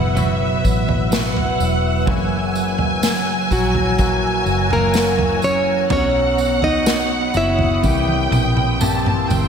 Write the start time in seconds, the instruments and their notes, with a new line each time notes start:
Already playing: fingered electric bass F#1, tine electric piano B2 F#3, clean electric guitar B3 E4 F#4, ambient pad B4 E5 F#5 E6, violin section F#5
0.15 tine electric piano B2, clean electric guitar F#3 B3 E4 F#4, violin section E5, floor tom, tambourine
0.64 fingered electric bass A1, tine electric piano F#3, kick, tambourine
0.89 floor tom
1.11 tine electric piano B2, clean electric guitar F#3 B3 E4 F#4, violin section F#5, snare, tambourine
1.36 floor tom
1.59 fingered electric bass E1, tine electric piano F#3, tambourine
2.06 fingered electric bass F#1, clean electric guitar F#2 C#3 E3 A#3 E4, tine electric piano F#3, ambient pad C#5 A#5, violin section G#5, kick, floor tom
2.11 clean electric guitar F#4
2.55 tine electric piano F#3, tambourine
2.78 floor tom
3.03 tine electric piano F#3, snare, tambourine
3.50 fingered electric bass A#1, tine electric piano F#3, nylon-string guitar F#3 F#4, kick, tambourine
3.75 floor tom
3.98 clean electric guitar E3 A#3 E4 F#4, tine electric piano F#3, kick, floor tom, tambourine
4.46 fingered electric bass F#1, tine electric piano F#3, tambourine
4.71 nylon-string guitar A#3 A#4, floor tom
4.94 clean electric guitar E3 A#3 E4 F#4, tine electric piano F#3, snare, tambourine
5.19 floor tom
5.42 tine electric piano F#3, nylon-string guitar C#4 C#5, tambourine
5.90 fingered electric bass B1, clean electric guitar B2 F#3 C#4 D#4 F#4, tine electric piano B3, nylon-string guitar C#4 C#5, violin section F#5, ambient pad B5 D#6, floor tom, tambourine
6.38 tine electric piano B3, tambourine
6.62 nylon-string guitar D#4 D#5, floor tom
6.86 tine electric piano B3, snare, tambourine
7.34 fingered electric bass F#1, tine electric piano B3, clean electric guitar C#4 F#4, nylon-string guitar E4 E5, tambourine
7.59 floor tom
7.82 fingered electric bass C2, clean electric guitar E3 A#3 E4 G4, tine electric piano C4, ambient pad A#4 G5 C6 E6, violin section G5, kick, high tom, tambourine
8.08 high tom
8.31 fingered electric bass A#1, tine electric piano C4, mid tom, tambourine
8.57 mid tom
8.81 clean electric guitar E3 A#3 E4 G4, tine electric piano C4, violin section A5, mid tom, tambourine
9.06 mid tom
9.30 fingered electric bass G1, tine electric piano C4, violin section G5, floor tom, tambourine